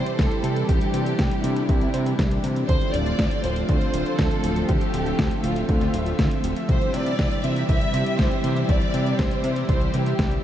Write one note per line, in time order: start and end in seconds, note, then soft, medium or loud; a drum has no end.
0.00 2.65 C3 medium
0.00 2.65 E3 medium
0.00 2.65 G3 medium
0.00 0.67 E4 medium
0.00 2.65 G4 medium
0.00 0.15 C5 loud
0.06 closed hi-hat soft
0.19 0.29 C2 medium
0.19 0.69 A4 medium
0.19 kick loud
0.19 snare loud
0.19 closed hi-hat medium
0.31 closed hi-hat soft
0.44 0.64 C3 medium
0.44 closed hi-hat medium
0.56 closed hi-hat soft
0.69 0.79 C2 medium
0.69 2.67 D4 medium
0.69 1.44 G4 loud
0.69 kick loud
0.69 closed hi-hat medium
0.81 closed hi-hat soft
0.94 1.14 C3 medium
0.94 closed hi-hat loud
1.06 closed hi-hat soft
1.19 1.29 C2 medium
1.19 kick loud
1.19 snare loud
1.19 closed hi-hat medium
1.31 closed hi-hat soft
1.44 1.64 C3 medium
1.44 1.68 E4 medium
1.44 closed hi-hat medium
1.56 closed hi-hat soft
1.69 1.89 C2 medium
1.69 2.40 E4 medium
1.69 kick loud
1.69 closed hi-hat medium
1.81 closed hi-hat soft
1.94 2.14 C3 loud
1.94 closed hi-hat medium
2.06 closed hi-hat soft
2.19 2.39 C2 medium
2.19 kick loud
2.19 snare loud
2.19 closed hi-hat medium
2.31 closed hi-hat soft
2.44 2.64 C3 medium
2.44 closed hi-hat medium
2.56 closed hi-hat soft
2.69 2.79 D2 medium
2.69 6.65 D3 medium
2.69 6.65 F3 medium
2.69 6.65 A3 medium
2.69 6.65 C4 medium
2.69 4.67 F4 medium
2.69 2.92 C5 loud
2.69 kick loud
2.69 closed hi-hat medium
2.81 closed hi-hat soft
2.94 3.14 D1 medium
2.94 3.44 D5 loud
2.94 closed hi-hat medium
3.06 closed hi-hat soft
3.19 3.29 D2 medium
3.19 kick loud
3.19 snare loud
3.19 closed hi-hat medium
3.31 closed hi-hat soft
3.44 3.64 D1 medium
3.44 3.68 C5 loud
3.44 closed hi-hat medium
3.56 closed hi-hat soft
3.69 3.79 D2 medium
3.69 4.15 C5 loud
3.69 kick loud
3.69 closed hi-hat medium
3.81 closed hi-hat soft
3.94 4.04 D1 medium
3.94 closed hi-hat medium
4.06 closed hi-hat soft
4.19 4.29 D2 medium
4.19 4.69 A4 loud
4.19 kick loud
4.19 snare loud
4.19 closed hi-hat medium
4.31 closed hi-hat soft
4.44 4.64 D1 medium
4.44 closed hi-hat medium
4.56 closed hi-hat soft
4.69 4.79 D2 medium
4.69 5.40 G4 loud
4.69 10.44 E5 medium
4.69 kick loud
4.69 closed hi-hat medium
4.81 closed hi-hat soft
4.94 5.14 D1 medium
4.94 closed hi-hat medium
5.06 closed hi-hat soft
5.19 5.29 D2 medium
5.19 kick loud
5.19 snare loud
5.19 closed hi-hat medium
5.31 closed hi-hat soft
5.44 5.64 D1 medium
5.44 5.67 F4 medium
5.44 closed hi-hat medium
5.56 closed hi-hat soft
5.69 5.89 D2 medium
5.69 6.40 F4 medium
5.69 kick loud
5.69 closed hi-hat medium
5.81 snare soft
5.81 closed hi-hat soft
5.94 6.14 D1 medium
5.94 closed hi-hat medium
6.06 closed hi-hat soft
6.19 6.29 D2 medium
6.19 kick loud
6.19 snare loud
6.19 closed hi-hat medium
6.31 closed hi-hat soft
6.44 6.54 D1 loud
6.44 closed hi-hat medium
6.56 closed hi-hat soft
6.69 6.79 C2 medium
6.69 10.44 C3 medium
6.69 10.44 E3 medium
6.69 10.44 G3 medium
6.69 10.44 G4 medium
6.69 6.92 C5 loud
6.69 kick loud
6.69 closed hi-hat medium
6.81 closed hi-hat soft
6.94 7.14 C3 medium
6.94 7.44 D5 loud
6.94 closed hi-hat medium
7.06 closed hi-hat soft
7.19 7.29 C2 medium
7.19 kick loud
7.19 snare loud
7.19 closed hi-hat medium
7.31 closed hi-hat soft
7.44 7.64 C3 medium
7.44 7.68 E5 loud
7.44 closed hi-hat medium
7.56 closed hi-hat soft
7.69 7.79 C2 medium
7.69 8.15 E5 loud
7.69 kick loud
7.69 closed hi-hat medium
7.81 closed hi-hat soft
7.94 8.04 C3 medium
7.94 closed hi-hat medium
8.06 closed hi-hat soft
8.19 8.29 C2 medium
8.19 8.69 C5 loud
8.19 kick loud
8.19 snare loud
8.19 closed hi-hat medium
8.31 closed hi-hat soft
8.44 8.64 C3 medium
8.44 closed hi-hat medium
8.56 closed hi-hat soft
8.69 8.79 C2 medium
8.69 9.19 D5 loud
8.69 kick loud
8.69 closed hi-hat medium
8.81 closed hi-hat soft
8.94 9.14 C3 medium
8.94 closed hi-hat medium
9.06 closed hi-hat soft
9.19 9.29 C2 medium
9.19 9.68 C5 medium
9.19 kick loud
9.19 snare loud
9.19 closed hi-hat medium
9.31 closed hi-hat soft
9.44 9.64 C3 medium
9.44 closed hi-hat medium
9.56 closed hi-hat soft
9.69 9.89 C2 medium
9.69 9.92 C5 medium
9.69 kick loud
9.69 closed hi-hat medium
9.81 closed hi-hat soft
9.94 10.14 C3 loud
9.94 10.44 G4 medium
9.94 closed hi-hat medium
10.06 closed hi-hat soft
10.19 10.39 C2 medium
10.19 kick loud
10.19 snare loud
10.19 closed hi-hat medium
10.31 closed hi-hat soft